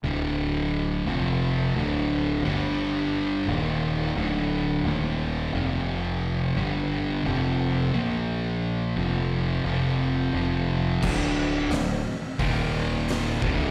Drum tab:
CC |--------|--------|--------|--------|
HH |--------|--------|--------|--------|
SD |--------|--------|--------|--------|
BD |--------|--------|--------|--------|

CC |x-------|
HH |--o-o-o-|
SD |--o---o-|
BD |o---o--o|